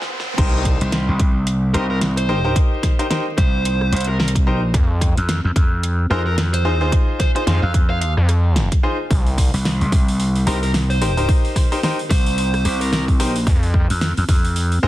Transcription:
Already playing: riser, swell
0.02 snare
0.20 snare
0.38 C2 D#4 G4 A#4 C5, kick, closed hi-hat, crash
0.65 kick, cross-stick, closed hi-hat
0.81 C2, closed hi-hat
0.92 snare, closed hi-hat
1.08 C2
1.20 C2, kick, closed hi-hat
1.47 closed hi-hat
1.74 C2 D#4 G4 A#4 C5, closed hi-hat
1.90 A#4
2.01 snare, closed hi-hat
2.17 C5, closed hi-hat
2.29 D#4 G4 A#4 C5
2.44 D#4 G4 A#4 C5
2.56 kick, closed hi-hat
2.83 kick, cross-stick, snare, closed hi-hat
2.99 D#4 G4 A#4 C5, closed hi-hat
3.10 D#4 G4 A#4 C5, snare, closed hi-hat
3.37 C2 C5, kick, closed hi-hat
3.65 closed hi-hat
3.81 cross-stick
3.92 C2, cross-stick, closed hi-hat
3.96 closed hi-hat
4.00 closed hi-hat
4.04 A#4, closed hi-hat
4.19 A#4, snare
4.28 closed hi-hat
4.35 kick, closed hi-hat
4.47 B1 D#4 G4 A#4 C5
4.74 F2, kick, closed hi-hat
5.01 kick, cross-stick, closed hi-hat
5.17 F2, closed hi-hat
5.29 snare, closed hi-hat
5.44 F2
5.56 F2, kick, closed hi-hat
5.83 closed hi-hat
6.10 F2 D#4 F4 G#4 A#4 C5
6.27 A#4
6.38 snare, closed hi-hat
6.54 C5, closed hi-hat
6.65 E2 D#4 F4 G#4 C5
6.81 D#4 F4 G#4 C5
6.92 kick, closed hi-hat
7.20 C5, kick, cross-stick, snare, closed hi-hat
7.35 D#4 F4 G#4 C5, closed hi-hat
7.47 F2 D#4 F4 G#4 C5 F5, snare, closed hi-hat
7.63 F2 F5
7.74 kick, closed hi-hat
7.90 F5
8.01 F5, closed hi-hat
8.17 F2, cross-stick
8.29 cross-stick, closed hi-hat
8.56 snare, closed hi-hat
8.72 kick, closed hi-hat
8.83 D#4 F4 G#4 C5
9.11 C2, kick, open hi-hat
9.26 open hi-hat
9.38 kick, cross-stick, open hi-hat
9.54 C2, open hi-hat
9.65 snare, open hi-hat
9.81 C2, open hi-hat
9.92 C2, kick, open hi-hat
10.08 open hi-hat
10.20 open hi-hat
10.36 open hi-hat
10.47 C2 D#4 G4 A#4 C5, open hi-hat
10.63 A#4, open hi-hat
10.74 snare, open hi-hat
10.90 C5, open hi-hat
11.01 D#4 G4 A#4 C5, open hi-hat
11.17 D#4 G4 A#4 C5, open hi-hat
11.29 kick, open hi-hat
11.45 open hi-hat
11.56 kick, cross-stick, snare, open hi-hat
11.72 D#4 G4 A#4 C5, open hi-hat
11.83 D#4 G4 A#4 C5, snare, open hi-hat
11.99 open hi-hat
12.10 C2 C5, kick, open hi-hat
12.26 open hi-hat
12.38 open hi-hat
12.54 cross-stick, open hi-hat
12.65 C2, cross-stick, open hi-hat
12.81 A#4, open hi-hat
12.92 A#4, snare, open hi-hat
13.08 kick, open hi-hat
13.20 B1 D#4 G4 A#4 C5, open hi-hat
13.36 open hi-hat
13.47 F2, kick, open hi-hat
13.63 open hi-hat
13.74 kick, cross-stick
13.90 F2, open hi-hat
14.01 snare, open hi-hat
14.17 F2, open hi-hat
14.29 F2, kick, open hi-hat
14.45 open hi-hat
14.56 open hi-hat
14.72 open hi-hat
14.83 F2 D#4 F4 G#4 A#4 C5

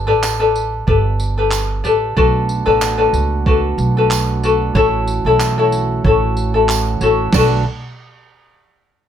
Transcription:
0.07 A1 G4 A4 B4 D5
0.23 clap, tambourine
0.40 G4 A4 B4 D5
0.56 tambourine
0.87 G1 G4 A4 B4 D5, kick
1.20 tambourine
1.38 G4 A4 B4
1.51 clap, tambourine
1.84 A1 G4 A4 B4 D5, tambourine
2.17 B1 A3 B3 D4 F#4 A4 B4 D5, kick
2.49 tambourine
2.66 A1 F#4 A4 B4 D5
2.81 clap, tambourine
2.98 F#4 A4 B4 D5
3.13 C#2, tambourine
3.46 F#4 A4 B4 D5, kick
3.78 B1, tambourine
3.97 F#4 A4 B4
4.11 clap, tambourine
4.43 F#4 A4 B4 D5, tambourine
4.74 A1 E3 C#4 E4 F#4 A4 C#5, kick
5.08 tambourine
5.25 B1 E4 F#4 A4 C#5
5.40 clap, tambourine
5.58 E4 F#4 A4 C#5
5.72 tambourine
6.04 A1 E4 F#4 A4 C#5, kick
6.37 tambourine
6.54 E4 F#4 A4
6.69 clap, tambourine
7.01 A1 E4 F#4 A4 C#5, tambourine
7.33 B1 D3 A3 B3 D4 F#4 B4 D5, kick, snare, tambourine, crash
7.37 A4

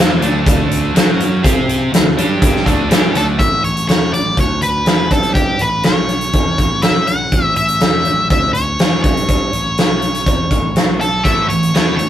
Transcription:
Already playing: E2 E3 B3 E4
0.20 D2 D3 A3 D4, closed hi-hat
0.46 kick, closed hi-hat
0.71 closed hi-hat
0.94 F#2 F#3 C#4 F#4, snare, closed hi-hat
1.20 closed hi-hat
1.43 C3 C4 G4 C5, kick, closed hi-hat
1.69 closed hi-hat
1.92 D2 D3 A3, snare, closed hi-hat
2.17 G2 G3 D4 G4, closed hi-hat
2.42 kick, closed hi-hat
2.56 snare
2.65 D2 D3 A3 D4, kick, closed hi-hat
2.90 G2 G3 D4 G4, snare, closed hi-hat
3.14 D2 D3 A3 D4 A4, closed hi-hat
3.39 A1 E5, kick, closed hi-hat
3.64 A1 C#5, closed hi-hat
3.77 closed hi-hat
3.88 E2 C#5, snare, closed hi-hat
4.12 A1 D5, closed hi-hat
4.37 D2 C#5, kick, closed hi-hat
4.62 B4, closed hi-hat
4.85 E2, snare, closed hi-hat
5.10 G2 A4, kick, closed hi-hat
5.23 closed hi-hat
5.34 G4, kick, closed hi-hat
5.59 A1 B4, closed hi-hat
5.83 B1 C#5, snare, closed hi-hat
6.09 closed hi-hat
6.21 closed hi-hat
6.33 E2, kick, closed hi-hat
6.58 A1, kick, closed hi-hat
6.82 B1 E5, snare, closed hi-hat
7.07 F#5, closed hi-hat
7.32 A1, kick, closed hi-hat
7.56 A1 E5, closed hi-hat
7.68 closed hi-hat
7.80 E2, snare, closed hi-hat
8.05 A1, closed hi-hat
8.30 D2 E5, kick, closed hi-hat
8.53 C#5, closed hi-hat
8.79 E2, snare, closed hi-hat
9.03 G2 C#5, kick, closed hi-hat
9.17 closed hi-hat
9.29 kick, closed hi-hat
9.53 A1, closed hi-hat
9.78 B1, snare, closed hi-hat
10.02 closed hi-hat
10.15 closed hi-hat
10.26 E2, kick, closed hi-hat
10.51 A1, kick, closed hi-hat
10.75 B1, snare, closed hi-hat
11.01 A4, closed hi-hat
11.24 A1 A2 E3 A3 E5, kick, closed hi-hat
11.49 A1 A2 E3 C#5, closed hi-hat
11.63 closed hi-hat
11.74 E2 E3 B3 E4, snare, closed hi-hat
11.97 A1 A2 E3 C#5, closed hi-hat

